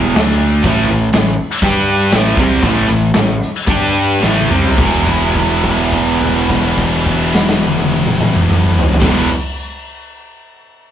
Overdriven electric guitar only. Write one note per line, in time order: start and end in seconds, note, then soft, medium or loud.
0.00 0.15 E2 medium
0.00 0.15 B2 medium
0.00 0.15 E3 loud
0.16 0.64 D3 medium
0.16 0.64 A3 medium
0.16 0.64 D4 medium
0.64 0.88 A2 loud
0.64 0.88 E3 loud
0.64 0.88 A3 loud
0.89 1.08 A2 medium
0.89 1.09 E3 medium
1.13 1.33 A2 medium
1.13 1.33 E3 medium
1.62 2.12 G3 medium
1.62 2.12 D4 loud
1.62 2.12 G4 loud
2.13 2.37 A2 medium
2.13 2.37 E3 medium
2.13 2.37 A3 medium
2.38 2.62 C3 medium
2.38 2.62 G3 loud
2.38 2.63 C4 loud
2.63 2.88 A2 loud
2.63 2.88 E3 loud
2.63 2.89 A3 loud
2.89 3.10 A2 medium
2.89 3.10 E3 medium
3.15 3.36 A2 medium
3.15 3.36 E3 medium
3.68 4.21 G3 medium
3.68 4.22 D4 loud
3.68 4.22 G4 loud
4.23 4.49 A2 medium
4.23 4.50 E3 medium
4.23 4.50 A3 loud
4.51 4.78 C3 medium
4.51 4.78 G3 medium
4.51 4.78 C4 loud
4.78 8.95 E2 loud
4.78 8.96 B2 medium
4.82 8.97 E3 loud
9.00 9.27 E2 medium
9.00 9.28 B2 loud
9.04 9.29 E3 loud